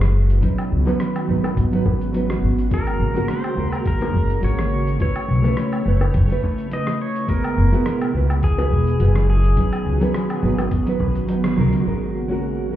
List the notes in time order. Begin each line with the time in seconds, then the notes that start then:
Already playing: F#1 B2 G#3 E4 F#4 B4
0.01 cross-stick, closed hi-hat, shaker
0.30 closed hi-hat, shaker
0.41 D#3 F#3 B3 C#4 D#4 F#4 B4, kick, closed hi-hat, shaker
0.58 closed hi-hat, low woodblock, shaker
0.72 C#2
0.85 F#3 C#4 D#4 B4, high bongo, shaker
1.00 cross-stick, closed hi-hat, shaker
1.16 closed hi-hat, low woodblock, shaker
1.27 G#1 F#3 C#4 D#4 B4
1.44 high bongo, low woodblock, shaker
1.57 G#1, kick, closed hi-hat, shaker
1.71 F#3 C#4 D#4 B4, closed hi-hat, shaker
1.86 G#1, kick, high bongo
2.01 closed hi-hat, shaker
2.13 F#3 C#4 D#4 B4, closed hi-hat, shaker
2.30 cross-stick, closed hi-hat, shaker
2.42 G#1
2.58 closed hi-hat, shaker
2.70 C#3 G#3 A#3 C#4 F#4 A#4, kick, closed hi-hat, shaker
2.74 A#4
2.87 closed hi-hat, low woodblock, shaker
3.00 G#1
3.14 G#3 C#4 F#4 A#4, shaker
3.28 C5, cross-stick, closed hi-hat, shaker
3.44 closed hi-hat, low woodblock, shaker
3.55 D#2 G#3 C#4 F#4 A#4
3.72 A#4, low woodblock, shaker
3.86 A#4, kick, closed hi-hat, shaker
3.99 G#3 C#4 F#4 A#4, closed hi-hat, high bongo, shaker
4.14 F#1, kick
4.30 closed hi-hat, shaker
4.41 G#1 G#3 C#4 F#4 A#4 C#5, closed hi-hat, shaker
4.59 cross-stick, closed hi-hat, shaker
4.87 closed hi-hat, shaker
4.98 A3 C#4 E4 B4 C#5, kick, closed hi-hat, shaker
5.16 closed hi-hat, low woodblock, shaker
5.28 B1
5.43 A3 C#4 E4, high bongo, shaker
5.47 B4
5.57 cross-stick, closed hi-hat, shaker
5.73 closed hi-hat, low woodblock, shaker
5.84 F#1 A3 C#4 E4 B4
6.01 high bongo, low woodblock, shaker
6.14 F#1, kick, closed hi-hat, shaker
6.28 A3 C#4 E4 B4, closed hi-hat, shaker
6.43 kick, high bongo
6.58 closed hi-hat, shaker
6.70 A3 C#4 E4 B4 D#5, closed hi-hat, shaker
6.87 cross-stick, closed hi-hat, shaker
7.02 C#5
7.16 closed hi-hat, shaker
7.27 B2 G#3 B3 E4 F#4 A#4, kick, closed hi-hat, shaker
7.44 closed hi-hat, low woodblock, shaker
7.57 F#1
7.71 G#3 B3 E4 F#4, shaker
7.86 cross-stick, closed hi-hat, shaker
8.01 closed hi-hat, low woodblock, shaker
8.13 C#2 G#3 E4 F#4 B4
8.30 low woodblock, shaker
8.43 G#4, kick, closed hi-hat, shaker
8.57 G#3 E4 F#4 B4, closed hi-hat, high bongo, shaker
8.71 E1, kick
8.87 closed hi-hat, shaker
8.98 F#1 G#3 E4 F#4 B4, closed hi-hat, shaker
9.16 cross-stick, closed hi-hat, shaker
9.30 G#4
9.44 closed hi-hat, shaker
9.56 D#3 F#3 B3 C#4 D#4 F#4 B4, kick, closed hi-hat, shaker
9.73 closed hi-hat, low woodblock, shaker
9.86 C#2
10.00 F#3 C#4 D#4 B4, closed hi-hat, high bongo, shaker
10.14 cross-stick, closed hi-hat, shaker
10.30 closed hi-hat, low woodblock, shaker
10.41 G#1 F#3 C#4 D#4 B4
10.58 closed hi-hat, high bongo, low woodblock, shaker
10.71 kick, closed hi-hat, shaker
10.85 F#3 C#4 D#4 B4, closed hi-hat, shaker
11.00 B1, kick, high bongo
11.15 G#1, closed hi-hat, shaker
11.27 F#3 C#4 D#4 B4, closed hi-hat, shaker
11.44 cross-stick, closed hi-hat, shaker
11.56 C#2 F#3 C#4 D#4 A#4
11.73 closed hi-hat, shaker
11.84 G#1 C#3 G#3 A#3 C#4 F#4 A#4
12.28 G#3 C#4 F#4 A#4
12.69 G#3 C#4 F#4